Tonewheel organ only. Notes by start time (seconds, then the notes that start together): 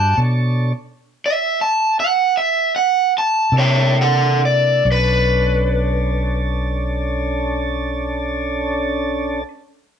Already playing: F#4 G4 D5
0.17 D4 A4 C#5
3.53 A#3 D4 E4
4.85 C#4 D4 A4